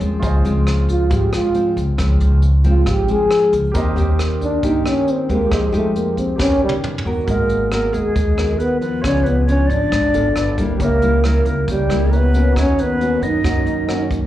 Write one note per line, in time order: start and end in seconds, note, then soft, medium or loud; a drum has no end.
0.00 0.10 D#2 medium
0.00 0.20 G2 medium
0.00 0.40 F3 medium
0.00 0.41 G#3 medium
0.00 0.41 C4 medium
0.00 0.18 F4 soft
0.00 0.22 G4 soft
0.00 0.22 A#4 soft
0.00 0.23 C#5 soft
0.00 kick soft
0.00 closed hi-hat soft
0.19 0.43 C#2 medium
0.19 1.08 C#3 medium
0.19 3.70 F4 medium
0.19 3.71 G#4 medium
0.19 3.71 C5 medium
0.19 kick medium
0.19 closed hi-hat medium
0.25 3.72 D#5 medium
0.44 1.06 C#2 medium
0.44 1.07 F3 medium
0.44 1.07 G#3 medium
0.44 1.07 C4 medium
0.44 closed hi-hat soft
0.67 cross-stick medium
0.67 closed hi-hat soft
0.89 1.15 F4 medium
0.89 kick soft
0.89 closed hi-hat soft
1.10 1.31 G#1 medium
1.10 1.96 G#2 medium
1.10 1.39 F3 medium
1.10 1.39 G#3 medium
1.10 1.39 C4 medium
1.10 kick medium
1.10 closed hi-hat medium
1.14 1.34 G4 medium
1.33 1.75 F4 medium
1.33 cross-stick medium
1.33 closed hi-hat soft
1.54 1.83 F3 medium
1.54 1.83 G#3 medium
1.54 1.83 C4 medium
1.54 closed hi-hat soft
1.77 1.87 C#2 medium
1.77 kick soft
1.77 closed hi-hat soft
1.97 2.19 C#2 medium
1.97 2.84 C#3 medium
1.97 2.42 F3 medium
1.97 2.42 G#3 medium
1.97 2.42 C4 medium
1.97 kick medium
1.97 cross-stick medium
1.97 closed hi-hat medium
2.20 2.83 C#2 medium
2.20 closed hi-hat soft
2.42 closed hi-hat soft
2.64 3.05 F3 medium
2.64 3.05 G#3 medium
2.64 3.05 C4 medium
2.64 kick soft
2.64 closed hi-hat soft
2.69 2.92 F4 medium
2.86 3.07 G#1 medium
2.86 3.73 G#2 medium
2.86 kick medium
2.86 cross-stick medium
2.86 closed hi-hat medium
2.91 3.13 G4 medium
3.08 3.73 F3 medium
3.08 3.73 G#3 medium
3.08 3.74 C4 medium
3.08 3.54 G#4 loud
3.08 closed hi-hat soft
3.31 cross-stick medium
3.31 closed hi-hat soft
3.53 3.63 C#2 medium
3.53 kick soft
3.53 closed hi-hat soft
3.72 3.95 D#2 loud
3.72 4.61 D#3 medium
3.72 3.94 A#3 medium
3.72 3.94 C4 medium
3.72 5.45 G4 medium
3.72 5.47 A#4 medium
3.72 5.48 C5 medium
3.72 kick medium
3.72 closed hi-hat medium
3.76 3.94 G4 medium
3.76 5.49 D#5 medium
3.96 4.59 D#2 medium
3.96 4.59 A#3 medium
3.96 4.59 C4 medium
3.96 4.60 G4 medium
3.96 closed hi-hat soft
4.19 cross-stick medium
4.19 closed hi-hat soft
4.41 4.67 D4 loud
4.41 kick soft
4.41 closed hi-hat soft
4.63 4.84 G2 medium
4.63 5.49 D#3 medium
4.63 5.26 A#3 medium
4.63 5.26 C4 soft
4.63 4.89 D#4 medium
4.63 5.26 G4 medium
4.63 kick medium
4.63 closed hi-hat medium
4.86 5.12 C#4 loud
4.86 cross-stick medium
4.86 closed hi-hat soft
5.08 5.33 C4 medium
5.08 closed hi-hat soft
5.29 5.39 D#2 medium
5.29 5.70 G#3 medium
5.29 5.55 A#3 medium
5.29 5.70 D#4 medium
5.29 5.71 G4 medium
5.29 kick soft
5.29 closed hi-hat soft
5.46 6.34 G4 medium
5.50 5.72 F2 loud
5.50 6.37 F3 medium
5.50 5.74 G#3 medium
5.50 6.38 C5 soft
5.50 6.38 D#5 medium
5.50 kick medium
5.50 cross-stick medium
5.50 closed hi-hat medium
5.72 6.35 F2 medium
5.72 6.35 G#3 medium
5.72 5.99 A3 medium
5.72 6.35 D#4 medium
5.72 6.36 G4 medium
5.72 closed hi-hat soft
5.96 6.18 A#3 medium
5.96 closed hi-hat soft
6.17 6.43 C4 medium
6.17 kick soft
6.17 closed hi-hat soft
6.36 6.60 D#2 loud
6.36 7.24 D#3 medium
6.36 7.01 B3 medium
6.36 7.02 C#4 medium
6.36 7.24 G4 soft
6.36 7.02 G4 medium
6.36 7.25 A#4 soft
6.36 kick medium
6.36 snare soft
6.40 6.63 C#4 loud
6.40 7.26 B4 soft
6.40 7.27 C#5 medium
6.64 6.76 G3 medium
6.69 high tom medium
6.84 mid tom medium
6.98 mid tom medium
7.05 7.16 D#2 medium
7.05 7.46 B3 medium
7.05 7.46 F#4 medium
7.05 7.47 A#4 medium
7.24 7.90 G#1 medium
7.24 8.13 G#3 soft
7.24 8.99 F#4 soft
7.24 9.00 A#4 soft
7.24 7.68 A#4 medium
7.24 kick medium
7.24 closed hi-hat medium
7.28 7.69 A#3 medium
7.28 9.02 D#5 medium
7.49 closed hi-hat soft
7.70 7.96 A#3 medium
7.70 8.16 B3 medium
7.70 8.16 F#4 medium
7.70 7.94 A#4 medium
7.70 8.17 A#4 medium
7.70 cross-stick medium
7.70 closed hi-hat soft
7.92 8.14 D#2 medium
7.92 8.62 G#3 medium
7.92 8.60 G#4 medium
7.92 closed hi-hat soft
8.15 8.36 D#2 medium
8.15 9.02 D#3 medium
8.15 kick medium
8.15 closed hi-hat medium
8.37 9.00 D#2 medium
8.37 8.78 B3 medium
8.37 8.78 F#4 medium
8.37 8.79 A#4 medium
8.37 cross-stick medium
8.37 closed hi-hat soft
8.58 8.81 B3 loud
8.58 8.80 B4 medium
8.58 closed hi-hat soft
8.80 9.44 F3 medium
8.80 9.05 B3 medium
8.80 9.44 B3 medium
8.80 9.03 B4 medium
8.80 closed hi-hat soft
9.02 9.66 C#2 medium
9.02 9.90 C#3 medium
9.02 9.28 C#4 loud
9.02 10.32 F4 medium
9.02 10.33 G#4 soft
9.02 10.34 B4 soft
9.02 9.25 C#5 medium
9.02 kick medium
9.02 cross-stick medium
9.02 closed hi-hat medium
9.07 10.35 D5 medium
9.24 9.48 B3 medium
9.24 9.44 B4 medium
9.24 closed hi-hat soft
9.45 9.92 F3 medium
9.45 9.92 B3 medium
9.45 9.92 D4 medium
9.45 9.68 C#5 medium
9.45 closed hi-hat soft
9.49 9.72 C#4 loud
9.67 9.90 G#1 medium
9.67 10.56 D5 medium
9.67 closed hi-hat soft
9.71 10.58 D4 loud
9.92 10.12 G#1 medium
9.92 10.34 G#2 medium
9.92 kick medium
9.92 cross-stick medium
9.92 closed hi-hat medium
10.13 10.34 G#1 medium
10.13 10.54 B3 medium
10.13 10.54 F4 medium
10.13 10.55 A4 medium
10.13 closed hi-hat soft
10.36 10.77 G1 medium
10.36 10.80 A4 soft
10.36 10.80 B4 medium
10.36 10.81 D5 medium
10.36 cross-stick medium
10.36 closed hi-hat soft
10.58 11.01 G3 medium
10.58 11.01 A#3 medium
10.58 11.02 E4 medium
10.58 kick medium
10.58 closed hi-hat soft
10.77 11.42 C#2 loud
10.77 11.66 C#3 medium
10.77 12.08 G4 soft
10.77 11.20 A#4 medium
10.77 12.09 A#4 soft
10.77 12.10 C#5 soft
10.77 kick medium
10.77 closed hi-hat medium
10.82 11.22 A#3 loud
10.82 12.11 E5 medium
11.02 11.20 G3 medium
11.02 11.21 A#3 medium
11.02 11.21 E4 medium
11.02 closed hi-hat soft
11.24 11.68 G3 medium
11.24 11.68 A#3 medium
11.24 11.46 A#3 medium
11.24 11.68 E4 medium
11.24 11.44 A#4 medium
11.24 cross-stick medium
11.24 closed hi-hat soft
11.45 11.66 C#2 medium
11.45 11.66 A#4 medium
11.45 closed hi-hat soft
11.49 11.68 A#3 medium
11.68 11.88 C#2 medium
11.68 12.54 C#3 medium
11.68 12.17 G3 loud
11.68 12.14 G4 medium
11.68 kick medium
11.68 closed hi-hat medium
11.90 12.52 C#2 medium
11.90 12.31 G3 medium
11.90 12.31 A#3 medium
11.90 12.31 E4 medium
11.90 cross-stick medium
11.90 closed hi-hat soft
12.11 12.56 B4 medium
12.11 12.55 C#5 soft
12.11 12.57 E5 soft
12.11 12.53 A#5 soft
12.11 closed hi-hat soft
12.16 12.58 B3 medium
12.34 12.97 A#3 medium
12.34 12.97 C#4 medium
12.34 12.97 F#4 medium
12.34 closed hi-hat soft
12.52 13.18 D#2 loud
12.52 13.42 D#3 medium
12.52 14.27 F#4 soft
12.52 14.27 A#5 soft
12.52 kick medium
12.56 12.84 C#4 loud
12.56 14.27 C#5 soft
12.56 12.81 C#5 medium
12.56 14.27 D#5 medium
12.56 cross-stick medium
12.56 closed hi-hat medium
12.79 13.24 B4 medium
12.79 closed hi-hat soft
12.83 13.28 B3 medium
13.01 13.41 A#3 medium
13.01 13.41 C#4 medium
13.01 13.41 F#4 medium
13.01 closed hi-hat soft
13.22 13.42 F#2 medium
13.22 14.10 D#5 medium
13.22 closed hi-hat soft
13.27 14.12 D#4 loud
13.43 13.65 F#2 medium
13.43 14.27 D#3 medium
13.43 13.84 A#3 medium
13.43 13.84 C#4 medium
13.43 13.85 F#4 medium
13.43 kick medium
13.43 cross-stick medium
13.43 closed hi-hat medium
13.66 14.27 F#2 medium
13.66 closed hi-hat soft
13.88 14.17 A#3 medium
13.88 14.18 C#4 medium
13.88 14.18 F#4 medium
13.88 cross-stick medium
13.88 closed hi-hat soft
14.11 kick medium
14.11 closed hi-hat soft